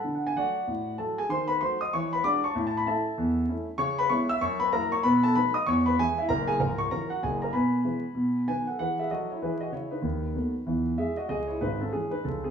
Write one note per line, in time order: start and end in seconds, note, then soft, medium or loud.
0.00 0.30 D3 medium
0.00 0.13 A4 medium
0.00 0.13 F#5 medium
0.00 0.13 A5 medium
0.15 0.25 F#5 medium
0.27 0.36 G#5 medium
0.36 0.53 F#3 soft
0.36 0.53 A3 soft
0.36 0.95 F#4 medium
0.36 0.95 D5 medium
0.36 0.98 F#5 medium
0.67 0.93 A2 medium
0.98 1.15 F#3 soft
0.98 1.15 A3 soft
0.98 1.16 F#4 soft
0.98 1.16 A4 medium
0.98 1.17 A5 medium
1.18 1.29 G#4 medium
1.18 1.30 G#5 medium
1.29 1.55 D#3 medium
1.29 1.48 C5 medium
1.29 1.48 C6 loud
1.48 1.60 B4 medium
1.48 1.60 B5 loud
1.61 1.78 F#3 soft
1.61 1.78 A3 soft
1.61 1.78 F#4 medium
1.61 1.79 C5 medium
1.61 1.79 C6 medium
1.81 1.92 D#5 medium
1.81 1.92 D#6 medium
1.93 2.19 E3 medium
1.93 2.11 C#5 medium
1.93 2.11 C#6 loud
2.13 2.23 B4 medium
2.13 2.24 B5 loud
2.24 2.41 G#3 soft
2.24 2.40 D4 soft
2.24 2.41 F#4 medium
2.24 2.42 D5 medium
2.24 2.42 D6 loud
2.44 2.64 C#5 medium
2.44 2.64 A5 medium
2.44 2.65 C#6 medium
2.55 2.81 A2 medium
2.67 2.76 A5 medium
2.77 2.86 B5 medium
2.86 3.03 A3 medium
2.86 3.03 C#4 medium
2.86 3.04 E4 medium
2.86 3.45 A4 medium
2.86 3.45 E5 medium
2.86 3.48 A5 medium
3.18 3.44 E2 medium
3.49 3.65 A3 medium
3.49 3.66 C#4 medium
3.49 3.66 E4 medium
3.78 4.05 C#3 medium
3.78 3.96 C#5 medium
3.78 3.97 C#6 loud
3.98 4.10 B4 medium
3.98 4.10 B5 loud
4.09 4.27 G#3 soft
4.09 4.27 B3 medium
4.09 4.27 E4 medium
4.09 4.28 C#5 medium
4.09 4.29 C#6 loud
4.29 4.41 E5 medium
4.29 4.41 E6 loud
4.41 4.68 F#2 medium
4.41 4.59 C#5 medium
4.41 4.60 C#6 loud
4.60 4.72 B4 medium
4.60 4.72 B5 loud
4.73 4.90 F#3 soft
4.73 4.90 A#3 soft
4.73 4.90 E4 medium
4.73 4.90 A#4 medium
4.73 4.91 A#5 loud
4.92 5.03 C#5 medium
4.92 5.04 C#6 loud
5.03 5.30 B2 medium
5.03 5.22 B4 medium
5.03 5.22 B5 loud
5.23 5.35 A4 medium
5.23 5.35 A5 loud
5.35 5.52 F#3 medium
5.35 5.53 A3 medium
5.35 5.53 D#4 medium
5.35 5.53 B4 medium
5.35 5.54 B5 loud
5.54 5.66 D#5 medium
5.54 5.66 D#6 medium
5.66 5.93 E2 medium
5.66 5.85 C#5 medium
5.66 5.85 C#6 loud
5.86 5.97 B4 medium
5.86 5.98 B5 loud
5.99 6.16 E3 medium
5.99 6.15 G#3 soft
5.99 6.16 E4 medium
5.99 6.16 G#4 medium
5.99 6.17 G#5 loud
6.18 6.29 E4 medium
6.18 6.29 E5 medium
6.29 6.54 F#1 medium
6.29 6.54 F#2 medium
6.29 6.47 A#4 medium
6.29 6.47 A#5 loud
6.48 6.59 G#4 medium
6.48 6.60 G#5 loud
6.59 6.84 C#1 medium
6.59 6.84 C#2 medium
6.59 6.78 A#4 medium
6.59 6.79 A#5 medium
6.78 6.91 C#5 medium
6.78 6.91 C#6 loud
6.91 7.08 E3 soft
6.91 7.08 F#3 soft
6.91 7.08 C#4 soft
6.91 7.09 A#4 medium
6.91 7.10 A#5 loud
7.10 7.22 F#4 medium
7.10 7.22 F#5 medium
7.23 7.48 F#1 medium
7.23 7.47 F#2 medium
7.23 7.41 G#4 medium
7.23 7.42 G#5 medium
7.42 7.54 A#4 medium
7.42 7.54 A#5 medium
7.53 7.80 B2 medium
7.53 8.44 B4 medium
7.53 8.44 G#5 medium
7.53 8.47 B5 medium
7.84 8.01 E3 soft
7.84 8.02 G#3 soft
7.84 8.02 B3 soft
8.15 8.42 B2 medium
8.48 8.65 D#3 soft
8.48 8.65 F#3 soft
8.48 8.65 B3 soft
8.48 8.66 B4 medium
8.48 8.66 G#5 medium
8.67 8.79 A4 soft
8.67 8.78 F#5 medium
8.79 9.04 E3 medium
8.79 8.99 G#4 soft
8.79 8.97 B4 medium
8.79 8.98 F#5 medium
8.99 9.10 G#4 medium
8.99 9.11 E5 medium
9.11 9.35 F#3 medium
9.11 9.29 F#4 medium
9.11 9.36 A4 medium
9.11 9.29 D#5 medium
9.31 9.42 E4 medium
9.31 9.42 C#5 medium
9.42 9.67 E3 medium
9.42 9.60 E4 medium
9.42 9.68 G#4 medium
9.42 9.61 B4 medium
9.61 9.72 F#4 medium
9.61 9.73 D#5 medium
9.72 9.97 C#3 medium
9.72 9.91 E4 soft
9.72 9.92 C#5 medium
9.91 10.94 D#4 medium
9.91 10.98 B4 medium
10.02 10.29 D#2 medium
10.02 10.29 D#3 medium
10.34 10.52 F#3 soft
10.34 10.52 A3 soft
10.34 10.52 B3 soft
10.66 10.93 E2 medium
10.66 10.93 E3 medium
10.98 11.15 E3 soft
10.98 11.15 G#3 soft
10.98 11.16 G#4 medium
10.98 11.17 E5 medium
11.17 11.29 F#4 medium
11.17 11.28 D#5 medium
11.29 11.54 C#2 medium
11.29 11.54 C#3 medium
11.29 11.47 G#4 medium
11.29 11.48 D#5 medium
11.48 11.60 E4 soft
11.48 11.60 C#5 medium
11.61 11.86 G#1 medium
11.61 11.86 G#2 medium
11.61 11.79 D#4 medium
11.61 11.80 B4 medium
11.81 11.92 C#4 medium
11.81 11.93 A4 medium
11.92 12.09 E3 soft
11.92 12.10 G#3 soft
11.92 12.11 C#4 medium
11.92 12.11 G#4 medium
12.11 12.23 D#4 medium
12.11 12.23 B4 medium
12.24 12.49 C#2 medium
12.24 12.49 C#3 medium
12.24 12.42 C#4 soft
12.24 12.43 A4 medium
12.44 12.51 C4 medium
12.44 12.51 G#4 medium